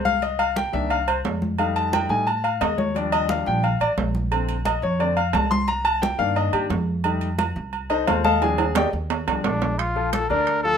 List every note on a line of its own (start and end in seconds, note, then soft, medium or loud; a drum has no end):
0.00 0.68 C2 medium
0.05 0.22 F5 loud
0.05 high conga medium
0.22 0.39 D#5 medium
0.22 high conga soft
0.22 low agogo medium
0.39 0.56 F5 loud
0.39 high conga soft
0.39 low agogo loud
0.56 0.73 G5 medium
0.56 high conga medium
0.56 low timbale medium
0.73 1.21 C2 loud
0.73 0.96 D#3 medium
0.73 0.96 A#3 medium
0.73 0.96 D4 medium
0.73 0.90 E5 loud
0.73 high conga soft
0.90 1.07 F5 loud
0.90 high conga soft
0.90 low agogo medium
1.08 1.18 C5 medium
1.08 high conga soft
1.08 low agogo loud
1.25 2.04 F2 medium
1.25 high conga medium
1.25 low timbale medium
1.42 high conga medium
1.58 2.07 G3 medium
1.58 2.07 A3 medium
1.58 2.08 D#4 medium
1.58 1.76 F5 medium
1.58 high conga soft
1.58 low agogo medium
1.76 1.92 A5 loud
1.76 high conga soft
1.76 low agogo medium
1.93 2.09 G5 medium
1.93 high conga loud
1.93 low timbale medium
1.93 low agogo loud
2.09 2.57 A2 loud
2.09 2.25 G3 medium
2.09 2.25 A3 medium
2.09 2.26 D#4 medium
2.09 2.27 G#5 medium
2.09 high conga soft
2.27 2.43 A5 medium
2.27 high conga soft
2.27 low agogo medium
2.44 2.60 F5 medium
2.44 high conga soft
2.44 low agogo medium
2.61 3.41 D#2 medium
2.61 2.78 D#5 medium
2.61 high conga medium
2.61 low timbale medium
2.61 low agogo loud
2.78 2.95 C#5 medium
2.78 high conga medium
2.95 3.45 F3 medium
2.95 3.45 G3 medium
2.95 3.46 D4 medium
2.95 3.12 D5 medium
2.95 high conga soft
2.95 low agogo medium
3.12 3.29 D#5 loud
3.12 high conga soft
3.12 low agogo loud
3.29 3.46 F5 medium
3.29 high conga medium
3.29 low timbale medium
3.46 3.78 A#1 loud
3.46 3.62 F3 medium
3.46 3.62 G3 soft
3.46 3.62 D4 medium
3.46 3.63 G5 loud
3.46 high conga soft
3.63 3.80 F5 medium
3.63 high conga soft
3.63 low agogo medium
3.80 3.96 A1 medium
3.80 3.91 D5 loud
3.80 high conga soft
3.80 low agogo loud
3.97 4.77 A#1 medium
3.97 high conga medium
3.97 low timbale medium
4.15 high conga medium
4.31 4.54 D3 medium
4.31 4.54 A3 medium
4.31 4.55 C4 medium
4.31 high conga soft
4.31 low agogo loud
4.48 high conga soft
4.48 low agogo medium
4.65 4.82 D#5 medium
4.65 high conga loud
4.65 low timbale medium
4.65 low agogo loud
4.82 5.30 F2 loud
4.82 5.00 C#5 loud
4.82 high conga soft
4.99 5.15 D3 medium
4.99 5.15 A3 soft
4.99 5.15 C4 medium
4.99 5.17 D5 medium
4.99 high conga soft
4.99 low agogo medium
5.17 5.33 F5 medium
5.17 high conga soft
5.17 low agogo medium
5.33 6.13 C2 medium
5.33 5.50 A5 loud
5.33 high conga medium
5.33 low timbale medium
5.33 low agogo loud
5.51 5.67 C6 loud
5.51 high conga medium
5.68 5.85 A#5 loud
5.68 high conga soft
5.68 low agogo medium
5.85 6.01 A5 loud
5.85 high conga soft
5.85 low agogo loud
6.02 6.19 G5 medium
6.02 high conga loud
6.02 low timbale medium
6.18 6.51 G2 loud
6.18 6.67 D#3 medium
6.18 6.68 A#3 medium
6.18 6.68 D4 medium
6.18 6.36 F5 loud
6.18 high conga soft
6.36 6.53 D#5 medium
6.36 high conga soft
6.36 low agogo medium
6.53 6.63 G4 medium
6.53 high conga soft
6.53 low agogo loud
6.70 7.50 F2 loud
6.70 high conga medium
6.70 low timbale medium
7.04 7.27 G3 medium
7.04 7.27 A3 soft
7.04 7.28 D#4 medium
7.04 high conga soft
7.04 low agogo loud
7.21 high conga soft
7.21 low agogo medium
7.38 high conga loud
7.38 low timbale medium
7.38 low agogo loud
7.56 8.04 C2 loud
7.56 high conga soft
7.73 high conga soft
7.73 low agogo medium
7.90 8.07 D#4 medium
7.90 8.07 A4 medium
7.90 8.06 C5 medium
7.90 8.07 D#5 medium
7.90 high conga soft
7.90 low agogo loud
8.07 8.87 D#2 loud
8.07 8.24 F4 medium
8.07 8.23 A4 medium
8.07 8.24 C5 medium
8.07 8.23 F5 medium
8.07 high conga medium
8.07 low timbale medium
8.07 low agogo loud
8.24 8.41 A4 medium
8.24 8.41 D#5 medium
8.24 8.41 F5 medium
8.24 8.41 A5 loud
8.24 high conga medium
8.41 8.64 F3 medium
8.41 8.64 G3 medium
8.41 8.65 D4 medium
8.41 8.74 G#4 medium
8.41 8.74 G#5 medium
8.41 high conga soft
8.41 high timbale medium
8.41 low agogo medium
8.58 high conga soft
8.58 high timbale medium
8.58 low agogo loud
8.75 8.87 G4 medium
8.75 8.87 D5 medium
8.75 8.87 D#5 medium
8.75 8.87 G5 medium
8.75 high conga loud
8.75 low timbale loud
8.93 9.25 D#2 loud
8.93 high conga soft
9.10 high conga soft
9.10 low timbale medium
9.10 low agogo medium
9.27 9.43 C2 medium
9.27 9.42 F3 medium
9.27 9.43 G3 soft
9.27 9.43 D4 medium
9.27 high conga soft
9.27 low timbale medium
9.27 low agogo loud
9.44 10.24 A#1 medium
9.44 9.80 D4 medium
9.44 high conga medium
9.44 low timbale loud
9.62 high conga medium
9.62 low timbale medium
9.79 10.12 F4 medium
9.79 high conga soft
9.79 high timbale medium
9.96 10.24 F3 medium
9.96 10.24 F4 medium
9.96 10.24 A4 medium
9.96 high conga soft
10.13 10.31 A4 medium
10.13 high conga medium
10.13 high timbale medium
10.13 low timbale medium
10.29 10.78 D2 loud
10.29 10.58 D3 medium
10.29 10.58 D4 medium
10.29 10.63 A#4 medium
10.29 10.59 D5 medium
10.29 high conga soft
10.47 high conga soft
10.47 high timbale medium
10.63 10.78 F3 medium
10.63 10.78 F4 medium
10.63 10.78 A4 loud
10.63 10.78 A4 medium
10.63 high conga soft